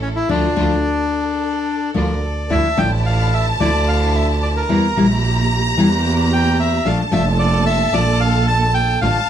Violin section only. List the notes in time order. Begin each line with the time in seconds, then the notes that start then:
Already playing: A4
0.30 F4
0.84 A4
1.95 A#4
2.22 A4
2.51 A5
4.69 A#5
6.86 A5
9.01 A5